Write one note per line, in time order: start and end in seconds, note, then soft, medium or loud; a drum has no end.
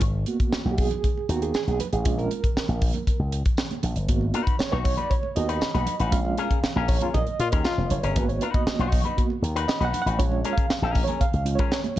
0.01 0.24 G#1 medium
0.01 kick loud
0.01 closed hi-hat loud
0.26 1.00 A#3 medium
0.26 1.00 B3 soft
0.26 1.00 F#4 medium
0.26 closed hi-hat medium
0.26 high conga soft
0.40 muted slap bass stroke soft
0.40 kick medium
0.40 closed hi-hat soft
0.52 muted slap bass stroke soft
0.52 snare loud
0.52 tambourine medium
0.52 muted conga soft
0.65 0.87 B1 medium
0.65 muted conga soft
0.65 high conga medium
0.72 0.78 G4 medium
0.78 1.31 G#4 loud
0.78 kick loud
0.78 open hi-hat medium
0.91 closed hi-hat medium
0.91 high conga medium
0.91 low conga medium
1.04 kick medium
1.04 closed hi-hat medium
1.04 muted conga soft
1.18 muted conga soft
1.29 1.51 D#2 loud
1.29 1.52 A#3 medium
1.29 1.52 B3 soft
1.29 1.53 F#4 medium
1.29 closed hi-hat medium
1.42 1.54 G#4 loud
1.42 closed hi-hat medium
1.54 1.81 G#4 loud
1.54 muted slap bass stroke medium
1.54 snare loud
1.54 tambourine loud
1.67 1.78 B1 medium
1.67 closed hi-hat soft
1.67 high conga medium
1.80 1.86 B4 loud
1.80 closed hi-hat medium
1.80 low conga medium
1.93 2.06 A1 medium
1.93 2.19 G#4 medium
1.93 closed hi-hat medium
2.05 2.27 A#1 loud
2.05 2.39 G#3 medium
2.05 2.39 C#4 medium
2.05 2.39 F4 medium
2.05 kick loud
2.05 closed hi-hat loud
2.05 muted conga soft
2.18 3.41 A#4 medium
2.18 closed hi-hat soft
2.18 muted conga soft
2.31 closed hi-hat medium
2.31 high conga soft
2.44 muted slap bass stroke medium
2.44 kick medium
2.44 closed hi-hat medium
2.57 muted slap bass stroke soft
2.57 snare loud
2.57 tambourine loud
2.68 2.91 A#1 medium
2.68 closed hi-hat soft
2.68 high conga medium
2.82 kick loud
2.82 open hi-hat medium
2.94 closed hi-hat soft
2.94 high conga medium
2.94 low conga medium
3.07 muted slap bass stroke soft
3.07 kick medium
3.07 closed hi-hat medium
3.07 muted conga soft
3.19 3.42 C#2 medium
3.32 closed hi-hat medium
3.45 kick loud
3.45 closed hi-hat medium
3.57 snare loud
3.57 tambourine loud
3.57 muted conga soft
3.70 closed hi-hat soft
3.70 high conga medium
3.83 3.94 A#1 medium
3.83 closed hi-hat medium
3.83 low conga medium
3.96 4.09 G1 medium
3.96 closed hi-hat medium
4.08 4.31 G#1 loud
4.08 4.42 A#3 medium
4.08 4.43 B3 medium
4.08 4.43 F#4 medium
4.08 kick loud
4.08 closed hi-hat medium
4.08 muted conga soft
4.21 muted conga soft
4.34 4.54 D#4 medium
4.34 4.55 F#4 medium
4.34 4.55 B4 medium
4.34 closed hi-hat medium
4.34 high conga soft
4.47 muted slap bass stroke soft
4.47 kick medium
4.47 closed hi-hat medium
4.59 4.73 C#5 medium
4.59 muted slap bass stroke soft
4.59 snare loud
4.59 tambourine loud
4.59 muted conga soft
4.72 4.95 B1 medium
4.72 4.93 D#4 medium
4.72 4.93 F#4 medium
4.72 4.78 B4 medium
4.72 4.93 C#5 medium
4.72 muted conga soft
4.72 high conga medium
4.84 4.98 C#5 loud
4.84 kick loud
4.84 open hi-hat medium
4.97 5.14 D#4 medium
4.97 5.14 F#4 medium
4.97 5.14 B4 medium
4.97 5.11 D5 medium
4.97 closed hi-hat soft
4.97 high conga medium
4.97 low conga medium
5.10 5.37 C#5 medium
5.10 kick medium
5.10 closed hi-hat medium
5.23 muted conga soft
5.35 5.58 D#2 loud
5.35 5.59 A#3 medium
5.35 5.59 B3 soft
5.35 5.59 F#4 medium
5.35 6.08 D#5 loud
5.35 closed hi-hat medium
5.48 5.70 D#4 medium
5.48 5.69 F#4 medium
5.48 5.69 B4 medium
5.48 closed hi-hat medium
5.61 muted slap bass stroke soft
5.61 snare loud
5.61 tambourine loud
5.61 muted conga soft
5.74 5.85 B1 medium
5.74 5.95 D#4 medium
5.74 5.95 F#4 medium
5.74 5.95 B4 medium
5.74 closed hi-hat soft
5.74 muted conga soft
5.74 high conga medium
5.86 closed hi-hat medium
5.86 low conga medium
6.00 6.12 A1 medium
6.00 6.16 D#4 medium
6.00 6.16 F#4 medium
6.00 6.16 B4 medium
6.00 closed hi-hat medium
6.11 6.34 A#1 loud
6.11 6.46 G#3 medium
6.11 6.46 C#4 medium
6.11 6.46 F4 medium
6.11 6.85 F5 loud
6.11 kick loud
6.11 closed hi-hat loud
6.11 muted conga soft
6.25 muted conga soft
6.38 6.58 C#4 medium
6.38 6.59 G#4 loud
6.38 6.59 A#4 medium
6.38 closed hi-hat medium
6.38 high conga soft
6.51 muted slap bass stroke soft
6.51 kick medium
6.51 closed hi-hat medium
6.63 muted slap bass stroke soft
6.63 snare loud
6.63 tambourine loud
6.63 muted conga soft
6.76 6.98 A#1 medium
6.76 6.97 C#4 medium
6.76 6.97 G#4 medium
6.76 6.96 A#4 loud
6.76 high conga medium
6.88 7.12 C#5 loud
6.88 kick loud
6.88 open hi-hat medium
7.01 7.18 C#4 soft
7.01 7.10 F4 medium
7.01 7.18 G#4 soft
7.01 7.18 A#4 medium
7.01 closed hi-hat medium
7.01 high conga medium
7.01 low conga medium
7.14 7.25 A#2 loud
7.14 7.93 D#5 loud
7.14 kick medium
7.14 closed hi-hat medium
7.14 muted conga soft
7.14 low conga medium
7.26 closed hi-hat soft
7.26 muted conga soft
7.39 7.51 A#2 loud
7.39 7.48 F4 loud
7.39 closed hi-hat medium
7.52 7.64 D#2 medium
7.52 7.73 C#4 medium
7.52 7.73 G#4 medium
7.52 7.73 A#4 loud
7.52 kick loud
7.52 closed hi-hat medium
7.64 8.01 F4 loud
7.64 snare loud
7.64 tambourine loud
7.64 muted conga soft
7.78 7.89 F1 medium
7.78 high conga medium
7.90 8.01 F#1 medium
7.90 8.17 C#5 medium
7.90 closed hi-hat medium
7.90 low conga medium
8.03 8.14 G1 medium
8.03 8.24 C#4 medium
8.03 8.24 G#4 medium
8.03 8.24 A#4 medium
8.03 closed hi-hat medium
8.15 8.38 G#1 loud
8.15 8.88 A#3 medium
8.15 8.88 B3 medium
8.15 8.89 F#4 medium
8.15 8.29 B4 medium
8.15 kick loud
8.15 closed hi-hat loud
8.29 8.42 C#5 medium
8.29 closed hi-hat soft
8.41 8.62 D#4 medium
8.41 8.62 F#4 medium
8.41 8.47 B4 medium
8.41 8.63 B4 medium
8.41 closed hi-hat medium
8.41 high conga medium
8.54 9.27 D#5 loud
8.54 muted slap bass stroke medium
8.54 kick medium
8.54 closed hi-hat soft
8.67 muted slap bass stroke soft
8.67 snare loud
8.67 tambourine loud
8.67 muted conga soft
8.79 9.01 B1 medium
8.79 9.01 D#4 medium
8.79 9.00 F#4 medium
8.79 9.00 C#5 medium
8.79 closed hi-hat soft
8.79 muted conga soft
8.79 high conga medium
8.92 kick loud
8.92 open hi-hat medium
9.04 9.21 D#4 medium
9.04 9.21 F#4 medium
9.04 9.21 B4 medium
9.04 closed hi-hat soft
9.04 high conga medium
9.04 low conga medium
9.17 9.40 A#3 soft
9.17 9.40 B3 soft
9.17 9.41 F#4 medium
9.17 kick medium
9.17 closed hi-hat medium
9.30 muted conga soft
9.42 9.65 D#2 loud
9.42 closed hi-hat medium
9.56 9.77 D#4 medium
9.56 9.76 F#4 medium
9.56 9.76 B4 medium
9.56 closed hi-hat medium
9.68 9.86 D#5 medium
9.68 muted slap bass stroke soft
9.68 snare loud
9.68 tambourine loud
9.80 9.92 B1 medium
9.80 10.02 D#4 medium
9.80 10.01 F#4 medium
9.80 10.01 B4 medium
9.80 closed hi-hat soft
9.80 muted conga soft
9.80 high conga medium
9.85 10.00 F#5 loud
9.93 closed hi-hat medium
9.93 low conga medium
10.02 10.09 F#5 loud
10.06 10.20 A1 medium
10.06 10.23 D#4 medium
10.06 10.23 F#4 medium
10.06 10.23 B4 medium
10.06 closed hi-hat medium
10.18 10.42 A#1 loud
10.18 10.53 G#3 medium
10.18 10.53 C#4 medium
10.18 10.53 F4 medium
10.18 10.54 C#5 loud
10.18 kick loud
10.18 closed hi-hat medium
10.18 muted conga soft
10.32 muted conga soft
10.44 10.65 C#4 medium
10.44 10.65 G#4 medium
10.44 10.65 A#4 loud
10.44 closed hi-hat medium
10.44 high conga soft
10.53 11.00 F5 loud
10.57 muted slap bass stroke medium
10.57 kick medium
10.57 closed hi-hat medium
10.70 muted slap bass stroke soft
10.70 snare loud
10.70 tambourine loud
10.70 muted conga soft
10.82 11.04 A#1 medium
10.82 11.04 C#4 medium
10.82 11.03 G#4 medium
10.82 11.03 A#4 medium
10.82 high conga medium
10.95 kick medium
10.95 open hi-hat medium
11.04 11.21 C#5 medium
11.04 closed hi-hat medium
11.04 high conga medium
11.04 low conga medium
11.08 11.25 C#4 soft
11.08 11.25 G#4 medium
11.08 11.24 A#4 medium
11.21 11.56 F5 loud
11.21 muted slap bass stroke soft
11.21 kick medium
11.21 closed hi-hat medium
11.21 muted conga soft
11.33 11.56 C#2 medium
11.33 closed hi-hat soft
11.45 11.69 G#3 medium
11.45 11.69 C#4 soft
11.45 11.69 F4 medium
11.45 closed hi-hat medium
11.55 11.79 A#4 medium
11.55 11.99 C#5 medium
11.55 closed hi-hat medium
11.59 11.80 C#4 medium
11.59 11.80 G#4 medium
11.59 kick loud
11.71 snare loud
11.71 tambourine loud
11.71 muted conga soft
11.84 closed hi-hat soft
11.84 muted conga soft
11.84 high conga medium
11.96 low conga medium